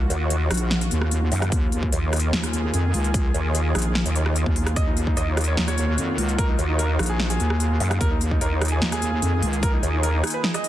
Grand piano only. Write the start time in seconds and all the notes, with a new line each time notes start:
4.76 D#5
4.87 D#4
5.07 D#4
5.17 D#5
5.27 D#4
5.37 D#4
5.48 C#5
5.58 D#4
5.68 C#5
6.38 A#4
6.49 D#4
6.69 D#4
6.79 A#4
6.89 D#4
6.99 D#4
7.09 G#4
7.19 D#4
7.30 G#4
8.01 A#4
8.11 D#4
8.32 D#4
8.41 A#4
8.52 D#4
8.62 D#4
8.72 G#4
8.82 D#4
8.92 G#4
9.63 A#4
9.73 D#4
9.94 D#4
10.03 A#4
10.14 D#4
10.24 D#4
10.34 B4
10.44 D#4
10.54 D#5